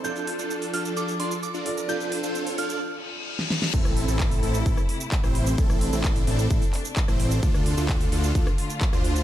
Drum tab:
CC |----------------|----------------|x---------------|----------------|
HH |--o--oo---o---o-|--o--oo---------|--o--oo---o---o-|--o--oo--oo---o-|
SH |xx-xxx-xxx-xxx-x|xx-xxx-x--------|xx-xxx-xxx-xxx-x|xx-xxx-xxx-xxx-x|
CP |----------------|----------------|----x-------x---|----x-----x-x---|
SD |----------------|-------------ooo|-r-------r---r--|-r-----------r--|
BD |----------------|----------------|o---o---o---o---|o---o---o---o---|

CC |----------------|
HH |--o--oo---o---o-|
SH |xx-xxx-xxx-xxx-x|
CP |----x-------x---|
SD |-r-------r---r--|
BD |o---o---o---o---|